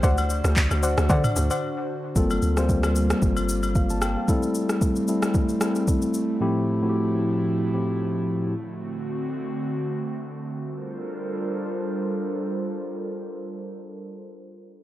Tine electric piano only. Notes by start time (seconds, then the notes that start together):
2.16 G3 A#3 C4 F4 A4
2.57 G3 A#3 C4 F4 C5
3.76 F5
3.90 A5
4.02 G5
4.17 F5
4.28 G3 A3 C4 E4 A4
5.08 G3 A3 C4 E4 A4
5.61 G3 A3 C4 E4 A4
6.41 A2 F3 A3 C4 E4 G4
6.82 A2 F3 A3 C4 E4 F#4
6.89 G4
7.73 A2 F3 A3 C4 E4 G4